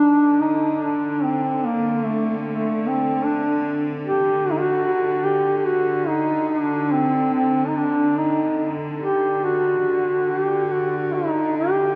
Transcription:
Already playing: D3 D4
0.41 D#4
0.81 D4
1.23 C4
1.65 A#3
2.04 A3
2.46 A3
2.87 C4
3.26 D4
4.06 G4
4.45 F#4
4.51 D#4
4.59 F#4
5.25 G4
5.58 G4
5.65 F#4
6.08 D#4
6.48 D4
6.92 C4
7.33 C4
7.67 D#4
7.76 D4
8.17 D#4
9.01 G4
9.44 F#4
9.86 D3
10.30 G4
10.71 F#4
11.14 D#4
11.57 G4

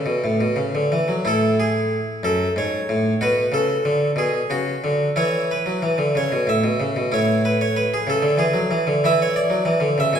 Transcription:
Already playing: E4 A4
0.06 B2
0.24 A2
0.41 B2
0.56 C#3
0.75 D3
0.92 E3
1.08 F#3
1.25 A2 E4 A4
1.60 G#4
2.23 F#2 A4
2.56 G#2 C#5
2.89 A2
3.21 B2 F#4 B4
3.52 C#3 A4
3.85 D3
4.16 B2 G#4
4.50 C#3 F#4
4.84 D3
5.16 E3 E4 C#5
5.51 B4
5.66 F#3
5.82 E3
5.98 D3
6.15 C#3 C#5
6.32 B2
6.47 A2 E5
6.64 B2
6.80 C#3
6.96 B2
7.12 A2 E4 C#5
7.45 B4
7.61 C#5
7.77 B4
7.94 G#4
8.07 C#3 A4
8.22 D3
8.37 E3 G#4
8.54 F#3
8.71 E3
8.87 D3
9.04 E3 E4 E5
9.22 C#5
9.36 D5
9.50 F#3
9.65 E3
9.80 D3
9.98 C#3 E5
10.13 B2 G#5

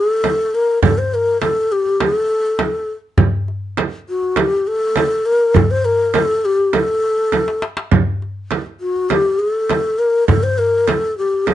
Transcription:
Already playing: A4
0.24 darbuka tek, frame drum
0.55 A#4
0.83 A4, frame drum, darbuka dum
0.98 C5
1.12 A#4, darbuka ka
1.41 A4, darbuka tek, frame drum
1.56 darbuka ka
1.72 G4
1.86 darbuka ka
2.00 A4, darbuka tek, frame drum
2.15 darbuka ka
2.59 darbuka tek, frame drum
3.18 darbuka dum, frame drum
3.48 darbuka ka
3.77 darbuka tek, frame drum
3.93 darbuka ka
4.09 F#4
4.23 darbuka ka
4.36 G4, darbuka tek, frame drum
4.52 darbuka ka
4.67 A4
4.96 darbuka tek, frame drum
5.26 A#4
5.54 A4, frame drum, darbuka dum
5.71 C5
5.85 A#4, darbuka ka
6.14 A4, darbuka tek, frame drum
6.45 G4
6.59 darbuka ka
6.73 A4, darbuka tek, frame drum
6.88 darbuka ka
7.32 darbuka tek, frame drum
7.48 darbuka ka
7.62 darbuka tek
7.77 darbuka ka
7.91 frame drum, darbuka dum
8.22 darbuka ka
8.51 darbuka tek, frame drum
8.66 darbuka ka
8.81 F#4
8.96 darbuka ka
9.09 G4, darbuka tek, frame drum
9.26 darbuka ka
9.39 G#4
9.51 A4
9.69 darbuka tek, frame drum
9.99 A#4
10.28 A4, frame drum, darbuka dum
10.43 C5
10.58 A#4, darbuka ka
10.88 A4, darbuka tek, frame drum
11.04 darbuka ka
11.18 G4
11.33 darbuka ka
11.47 A4, darbuka tek, frame drum

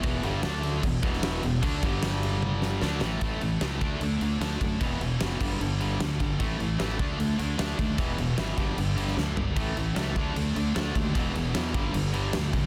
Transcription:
0.03 E1 E2 B2 E3, kick, crash
0.23 G1 G2 D3 G3, crash
0.43 D2 D3 A3 D4, snare, crash
0.63 crash
0.83 E1 E2 B2, kick, crash
1.03 E1 E2 B2 E3, kick, crash
1.13 snare
1.23 snare, crash
1.43 E1 E2 B2, crash
1.62 D2 D3 A3 D4, kick, crash
1.82 G1 G2 D3 G3, kick, crash
2.03 snare, crash
2.23 crash
2.42 high tom
2.62 snare
2.81 D2 D3 A3 D4, snare
3.01 A1 A2 E3 A3, snare
3.21 A1 A2 E3 A3, kick, crash
3.41 A1 A2 E3 A3, crash
3.61 C#2 A2 E3 A3, snare, crash
3.81 D2 D3 A3 D4, kick, crash
4.01 D2 D3 A3 D4, crash
4.21 D2 D3 A3 D4, crash
4.40 D2 D3 A3 D4, snare, crash
4.60 F#2 D3 A3 D4, kick, crash
4.80 E1 E2 B2 E3, kick, crash
5.00 E1 E2 B2 E3, crash
5.20 F#1 E2 B2 E3, snare, crash
5.40 G1 G2 D3 G3, kick, crash
5.60 G1 G2 D3 G3, crash
5.80 G2 D3 G3, crash
6.00 D2 G2 D3 G3, snare, crash
6.20 G1 G2 D3 G3, kick, crash
6.39 A1 A2 E3 A3, kick, crash
6.60 A1 A2 E3 A3, crash
6.79 A1 A2 E3 A3, snare, crash
6.99 D2 D3 A3 D4, kick, crash
7.19 D2 D3 A3 D4, crash
7.39 D2 D3 A3 D4, crash
7.58 D2 D3 A3 D4, snare, crash
7.79 D#2 D3 A3 D4, kick, crash
7.98 E1 E2 B2 E3, kick, crash
8.18 E1 E2 B2 E3, crash
8.38 G#1 E2 B2 E3, snare, crash
8.57 G1 G2 D3 G3, kick, crash
8.77 G1 G2 D3 G3, crash
8.98 G2 D3 G3, crash
9.07 snare
9.17 D2 G2 D3 G3, snare
9.37 G1 G2 D3 G3, floor tom
9.56 A1 A2 E3 A3, kick, crash
9.76 A1 A2 E3 A3, crash
9.96 C#2 A2 E3 A3, snare, crash
10.15 D2 D3 A3 D4, kick, crash
10.35 D2 D3 A3 D4, crash
10.56 D2 D3 A3 D4, crash
10.75 D2 D3 A3 D4, snare, crash
10.95 D#2 D3 A3 D4, kick, crash
11.14 E1 E2 B2 E3, kick, crash
11.34 E1 E2 B2 E3, crash
11.54 E2 B2 E3, snare, crash
11.74 G1 G2 D3 G3, kick, crash
11.93 G1 G2 D3 G3, crash
12.13 G2 D3 G3, crash
12.33 D2 G2 D3 G3, snare, crash
12.53 B1 G2 D3 G3, kick, crash

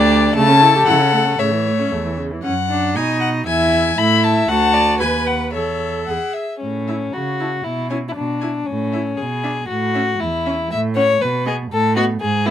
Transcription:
Already playing: D2 D4 G4 D5
0.35 C#3 A3 A4 A5
0.49 C#4
0.61 E4
0.75 G4
0.87 C#3 E4 F#5
1.00 C#4
1.13 A3
1.25 C#4
1.39 A2 C#3 C#5 E5
1.52 E3
1.66 A3
1.79 C#4
1.91 E2 A3
2.05 E3
2.18 C#3
2.32 E3
2.43 F#2 C#4 F#5
2.69 D4
2.96 B2 D#4 D#5 G#5
3.21 F#5
3.46 E2 E4 E5 G#5
3.97 A2 E4 E5 B5
4.24 A5
4.48 D2 F#4 F#5 A5
4.74 D5
4.99 D#2 B4 G#5
5.27 F#5
5.54 E2 A4 C#5 E5
6.07 E2 G#4 F#5
6.34 E5
6.60 A2 C#4
6.87 E4 E5
7.13 C#3 F#4
7.40 E4 A5
7.64 B2 E4
7.90 C#4 E4 G#5
8.09 E4
8.15 B2 D4
8.41 E4 G#5
8.66 A2 C#4
8.92 E4 E5
9.18 B2 G#4
9.44 D4 E5
9.68 A2 F#4
9.94 C#4 E5
10.20 E2 E4
10.45 C#4 E5
10.71 A2 E5
10.95 C#4 C#5 F#5
11.21 B2 B4
11.46 B3 G#4 D#5
11.71 A2 A4
11.96 B3 F#4 D#5
12.21 G#2 G#4
12.46 B3 E4 E5

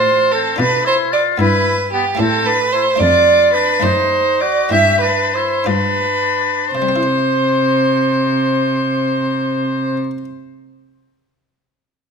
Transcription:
Already playing: A2 C4 F4 C5
0.31 C4 A4
0.56 B2 D4 F4 B4
0.85 E4 C5
1.12 F4 D5
1.37 G2 B3 E4 B4
1.93 B3 G4
2.15 A3 C4 E4 A4
2.19 A2 C4
2.46 D4 B4
2.72 E4 C5
2.96 A3 D4 D5
3.00 F2 F4
3.54 D4 B4
3.80 F#2 A3 C4 D#4 C5
3.84 F#2 D#4
4.41 F#4 D5
4.69 G2 C4 E4 G4 E5
5.01 D4 B4
5.34 E4 C5
5.64 G2 D4 F4 B4
6.73 C3 C5
6.82 G3
6.89 C4
6.96 E4
7.03 C5

